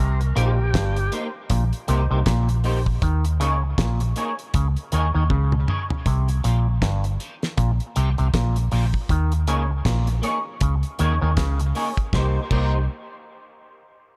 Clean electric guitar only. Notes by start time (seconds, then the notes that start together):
0.35 A#3 D#4 G4 C5
0.97 muted clean electric guitar stroke
1.12 A#3 D#4 G4 C5
1.88 A#3 D#4 G4 C5
2.11 A#3 D#4 G4 C5
2.64 A#3 D#4 G4 C5
3.40 A#3 D#4 G#4 C#5
4.01 muted clean electric guitar stroke
4.16 A#3 D#4 G#4 C#5
4.92 A#3 D#4 G#4 C#5
5.14 A#3 D#4 G#4 C#5
5.68 A#3 D#4 G#4 C#5
6.44 A#3 D#4 G4 C5
7.05 muted clean electric guitar stroke
7.20 A#3 D#4 G4 C5
7.96 A#3 D#4 G4 C5
8.19 A#3 D#4 G4 C5
8.72 A#3 D#4 G4 C5
9.48 A#3 D#4 G#4 C#5
10.08 muted clean electric guitar stroke
10.22 A#3 D#4 G#4 C#5
10.99 A#3 D#4 G#4 C#5
11.21 A#3 D#4 G#4 C#5
11.75 A#3 D#4 G#4 C#5
12.13 A#3 D#4 G4 C5
12.51 A#3 D#4 G4 C5